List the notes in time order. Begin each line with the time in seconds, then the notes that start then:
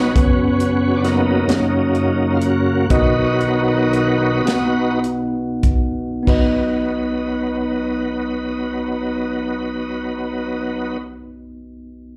Already playing: B1 B2 F#3 B3 C#4 D#4 F#4 B4 C#5
0.15 F#2 C#3 B3 C#4 F#4 B4 C#5, kick, closed hi-hat
0.60 closed hi-hat
0.96 D4
1.04 F#3 A#3 D#4, snare, closed hi-hat
1.48 F#2 C#3 A#3 C#4 F#4 A#4 C#5, snare, closed hi-hat
1.95 closed hi-hat
2.34 F4
2.41 F#4, closed hi-hat
2.89 B1 B2 D#3 F#3 B3 D#4 F#4 B4 D#5, kick, closed hi-hat
3.41 closed hi-hat
3.93 closed hi-hat
4.45 B3 D#4 F#4 B4 F#5, snare, closed hi-hat
5.04 closed hi-hat
5.63 kick, closed hi-hat
6.23 B1 B3 D#4 F#4
6.27 F#3 B3 D#4 B4 D#5, kick, crash